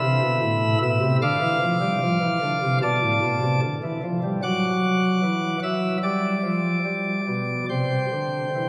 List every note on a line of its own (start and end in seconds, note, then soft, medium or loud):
0.00 0.19 C3 medium
0.00 0.78 E5 medium
0.00 0.78 B5 medium
0.00 0.78 E6 loud
0.22 0.39 B2 medium
0.42 0.75 A2 medium
0.82 0.99 B2 medium
0.82 1.16 E5 medium
0.82 1.16 E6 loud
1.02 1.18 C3 medium
1.22 1.38 D3 medium
1.22 2.78 F5 medium
1.22 2.78 D6 medium
1.22 2.78 F6 loud
1.41 1.58 E3 medium
1.61 1.78 F3 medium
1.81 1.98 G3 medium
2.02 2.19 F3 medium
2.21 2.38 E3 medium
2.42 2.59 D3 medium
2.63 2.80 C3 medium
2.82 2.99 B2 medium
2.82 3.60 D5 medium
2.82 3.60 A5 medium
2.82 3.60 D6 loud
3.02 3.19 A2 medium
3.22 3.39 B2 medium
3.42 3.59 C3 medium
3.62 3.79 D3 medium
3.83 4.00 E3 medium
4.03 4.20 F3 medium
4.23 4.40 G3 medium
4.43 5.21 F#3 medium
4.43 5.60 F#5 medium
4.43 5.59 D6 medium
4.43 5.59 F#6 loud
5.23 5.57 E3 medium
5.63 5.97 F#3 medium
5.63 5.97 E5 medium
5.63 5.97 E6 medium
6.03 6.38 G3 medium
6.03 7.66 D5 medium
6.03 7.66 D6 medium
6.44 6.79 F3 medium
6.85 7.21 G3 medium
7.28 7.64 B2 medium
7.69 8.06 C3 medium
7.69 8.69 C5 soft
7.69 8.69 G5 soft
7.69 8.69 C6 medium
8.13 8.49 D3 medium
8.55 8.69 E3 medium